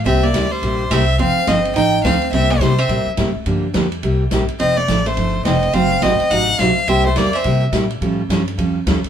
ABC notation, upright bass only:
X:1
M:4/4
L:1/8
Q:"Swing" 1/4=211
K:Cmix
V:1 name="Upright bass" clef=bass
C,,2 D,,2 B,,,2 C,,2 | F,,, z G,,,2 A,,,2 D,,2 | C,,2 C,2 B,, z A,, z | G,,2 F,,2 C,,2 B,,, z |
F,,,2 A,,,2 G,,,2 F,,,2 | ^F,,,2 _A,,, z =A,,,2 =B,,, z | C,,2 E,,2 C,2 B,,2 | A,,2 G,,2 ^E,,2 _E,, z |]